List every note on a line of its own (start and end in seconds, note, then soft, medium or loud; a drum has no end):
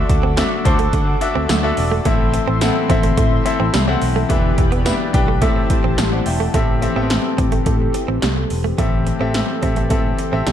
0.00 0.62 D3 medium
0.00 0.65 D3 medium
0.00 0.67 A3 medium
0.00 0.24 D4 medium
0.00 0.63 D4 medium
0.00 0.24 F#4 medium
0.00 0.25 A4 medium
0.00 4.26 A4 medium
0.00 0.25 E5 medium
0.00 2.04 F#5 medium
0.00 2.03 D6 medium
0.00 6.50 E6 medium
0.09 0.41 D2 loud
0.09 muted clean electric guitar stroke soft
0.09 kick medium
0.09 closed hi-hat medium
0.23 0.32 C4 medium
0.37 0.46 C4 medium
0.37 0.59 D4 medium
0.37 0.59 F#4 medium
0.37 0.59 A4 medium
0.37 0.59 E5 medium
0.37 snare loud
0.37 closed hi-hat medium
0.37 tambourine medium
0.65 0.87 D2 medium
0.65 0.93 A3 soft
0.65 0.93 D4 medium
0.65 1.08 D4 medium
0.65 1.08 F#4 medium
0.65 1.09 A4 medium
0.65 1.09 C5 medium
0.65 0.91 A5 medium
0.65 muted clean electric guitar stroke soft
0.65 kick loud
0.65 closed hi-hat medium
0.79 0.88 A3 medium
0.79 closed hi-hat medium
0.92 1.48 D3 medium
0.92 1.14 D3 loud
0.92 1.02 A3 medium
0.92 1.50 A3 medium
0.92 1.50 D4 medium
0.92 1.20 F#5 medium
0.92 kick loud
0.92 closed hi-hat medium
1.07 muted clean electric guitar stroke soft
1.21 1.54 D4 medium
1.21 1.54 F#4 medium
1.21 1.54 A4 medium
1.21 1.48 E5 loud
1.21 closed hi-hat medium
1.35 1.46 D2 medium
1.35 1.44 C4 medium
1.49 1.71 D2 medium
1.49 2.05 D3 medium
1.49 1.58 F#3 medium
1.49 2.08 A3 medium
1.49 2.07 D4 medium
1.49 1.63 E5 medium
1.49 snare loud
1.49 closed hi-hat medium
1.49 tambourine medium
1.63 1.96 D4 medium
1.63 1.96 F#4 medium
1.63 1.96 A4 medium
1.63 1.96 E5 loud
1.63 muted clean electric guitar stroke soft
1.77 1.99 E1 medium
1.77 2.04 D5 medium
1.77 open hi-hat medium
1.92 2.00 A3 medium
2.04 2.37 A1 loud
2.04 3.16 A2 medium
2.04 2.86 A2 medium
2.04 3.18 E3 medium
2.04 2.14 A3 medium
2.04 2.49 C4 medium
2.04 2.49 E4 medium
2.04 2.49 A4 medium
2.04 4.28 E5 medium
2.04 2.49 E5 loud
2.04 4.28 C6 medium
2.04 kick loud
2.04 closed hi-hat medium
2.08 3.18 A3 loud
2.34 muted clean electric guitar stroke soft
2.34 closed hi-hat medium
2.48 2.69 A1 medium
2.48 2.56 C4 medium
2.61 2.83 C4 medium
2.61 2.83 E4 medium
2.61 2.83 A4 medium
2.61 2.84 F#5 medium
2.61 muted clean electric guitar stroke soft
2.61 snare loud
2.61 closed hi-hat medium
2.61 tambourine medium
2.89 3.11 A1 medium
2.89 3.33 C4 medium
2.89 2.98 C4 medium
2.89 3.33 E4 medium
2.89 3.33 A4 medium
2.89 3.33 E5 medium
2.89 kick loud
2.89 closed hi-hat medium
3.03 3.12 A3 medium
3.03 closed hi-hat medium
3.17 3.72 A2 medium
3.17 3.39 A2 loud
3.17 3.74 E3 medium
3.17 3.26 A3 medium
3.17 3.74 A3 medium
3.17 kick medium
3.17 closed hi-hat medium
3.45 3.78 C4 medium
3.45 3.78 E4 medium
3.45 3.78 A4 medium
3.45 3.78 E5 medium
3.45 muted clean electric guitar stroke soft
3.45 closed hi-hat medium
3.60 3.71 A1 medium
3.60 3.68 C4 medium
3.73 3.95 C2 medium
3.73 4.28 A2 medium
3.73 4.30 E3 medium
3.73 3.82 G3 medium
3.73 4.31 A3 medium
3.73 snare loud
3.73 closed hi-hat medium
3.73 tambourine medium
3.87 4.20 C4 medium
3.87 4.20 E4 medium
3.87 4.20 A4 medium
3.87 4.21 F#5 loud
3.87 muted clean electric guitar stroke soft
4.02 4.23 B1 medium
4.02 open hi-hat medium
4.16 4.24 A3 medium
4.28 4.51 E1 loud
4.28 5.41 E2 medium
4.28 5.41 B2 medium
4.28 5.10 E3 medium
4.28 4.38 A3 medium
4.28 4.73 D4 medium
4.28 4.73 G4 medium
4.28 5.41 G4 medium
4.28 4.73 B4 medium
4.28 5.41 D5 medium
4.28 4.73 E5 medium
4.28 5.41 B5 medium
4.28 kick loud
4.28 closed hi-hat loud
4.33 5.42 E3 loud
4.58 4.90 E1 loud
4.58 muted clean electric guitar stroke soft
4.58 kick loud
4.58 closed hi-hat medium
4.72 4.80 B3 medium
4.72 closed hi-hat medium
4.85 4.95 B3 medium
4.85 5.07 D4 medium
4.85 5.07 G4 medium
4.85 5.07 B4 medium
4.85 5.08 E5 medium
4.85 snare loud
4.85 closed hi-hat medium
4.85 tambourine medium
5.13 5.43 B1 medium
5.13 5.42 D4 medium
5.13 5.40 G4 medium
5.13 5.42 B4 medium
5.13 5.42 G5 medium
5.13 muted clean electric guitar stroke soft
5.13 kick loud
5.13 closed hi-hat medium
5.28 5.37 A3 medium
5.41 5.96 A2 medium
5.41 5.63 A2 loud
5.41 6.22 A2 medium
5.41 5.98 E3 medium
5.41 5.50 A3 medium
5.41 5.99 A3 medium
5.41 5.64 C4 medium
5.41 5.64 G4 medium
5.41 6.53 G4 medium
5.41 5.65 A4 medium
5.41 6.53 C5 medium
5.41 5.65 E5 loud
5.41 6.53 A5 medium
5.41 kick loud
5.41 closed hi-hat medium
5.56 muted clean electric guitar stroke soft
5.70 kick medium
5.70 closed hi-hat medium
5.84 5.95 A1 medium
5.84 5.93 C4 medium
5.97 6.19 A1 loud
5.97 6.54 A2 medium
5.97 7.05 E3 medium
5.97 6.07 G3 medium
5.97 7.05 A3 medium
5.97 snare loud
5.97 closed hi-hat medium
5.97 tambourine medium
6.12 6.26 D5 medium
6.12 6.26 F#5 medium
6.12 muted clean electric guitar stroke soft
6.26 6.47 E1 medium
6.26 6.40 E5 medium
6.26 6.40 G5 medium
6.26 open hi-hat medium
6.40 6.49 A3 medium
6.40 6.67 F#5 medium
6.40 6.67 A5 medium
6.54 6.86 A1 loud
6.54 7.34 A2 medium
6.54 8.76 E3 medium
6.54 6.63 A3 medium
6.54 6.75 C4 medium
6.54 8.76 C4 medium
6.54 6.76 G4 medium
6.54 8.76 G4 medium
6.54 8.76 A4 medium
6.54 6.76 A4 medium
6.54 6.76 E5 medium
6.54 kick loud
6.54 closed hi-hat loud
6.82 6.93 C4 medium
6.82 6.93 G4 medium
6.82 6.93 A4 medium
6.82 6.93 E5 medium
6.82 muted clean electric guitar stroke soft
6.82 closed hi-hat medium
6.96 7.17 A1 medium
6.96 7.02 B3 medium
6.96 7.05 C4 medium
6.96 7.82 G4 medium
6.96 7.82 A4 medium
6.96 7.83 E5 medium
7.02 7.85 C4 medium
7.10 muted clean electric guitar stroke soft
7.10 snare loud
7.10 closed hi-hat medium
7.38 7.59 A1 medium
7.38 7.47 C4 medium
7.38 kick loud
7.38 closed hi-hat medium
7.52 7.61 A3 medium
7.52 closed hi-hat medium
7.66 7.87 A2 loud
7.66 7.75 A3 medium
7.66 kick medium
7.66 closed hi-hat medium
7.94 muted clean electric guitar stroke soft
7.94 closed hi-hat medium
8.08 8.19 A1 medium
8.08 8.17 C4 medium
8.22 8.44 C2 medium
8.22 8.31 G3 medium
8.22 snare loud
8.22 closed hi-hat medium
8.37 muted clean electric guitar stroke soft
8.50 8.72 E1 medium
8.50 open hi-hat medium
8.64 8.73 A3 medium
8.78 9.10 A1 medium
8.78 9.59 A2 medium
8.78 10.52 E3 medium
8.78 8.87 A3 medium
8.78 9.11 C4 medium
8.78 10.52 C4 medium
8.78 9.11 G4 medium
8.78 10.52 G4 medium
8.78 10.52 A4 medium
8.78 9.11 A4 medium
8.78 9.11 E5 medium
8.78 kick loud
8.78 closed hi-hat medium
9.07 muted clean electric guitar stroke soft
9.07 closed hi-hat medium
9.20 9.42 A1 medium
9.20 9.52 C4 medium
9.20 9.29 C4 medium
9.20 9.53 G4 medium
9.20 9.53 A4 medium
9.20 9.53 E5 medium
9.34 muted clean electric guitar stroke soft
9.34 snare loud
9.34 closed hi-hat medium
9.62 9.92 A1 medium
9.62 9.84 C4 medium
9.62 9.71 C4 medium
9.62 9.84 G4 medium
9.62 9.84 A4 medium
9.62 9.84 E5 medium
9.62 kick medium
9.62 closed hi-hat medium
9.76 9.85 A3 medium
9.76 closed hi-hat medium
9.90 10.12 A2 medium
9.90 9.99 A3 medium
9.90 10.23 C4 medium
9.90 10.23 G4 medium
9.90 10.23 A4 medium
9.90 10.23 E5 medium
9.90 kick medium
9.90 closed hi-hat medium
10.19 muted clean electric guitar stroke soft
10.19 closed hi-hat medium
10.32 10.43 A1 medium
10.32 10.52 C4 medium
10.32 10.41 C4 medium
10.32 10.52 G4 medium
10.32 10.52 A4 medium
10.32 10.52 E5 medium
10.47 10.52 C2 medium
10.47 10.52 G3 medium
10.47 snare loud
10.47 closed hi-hat medium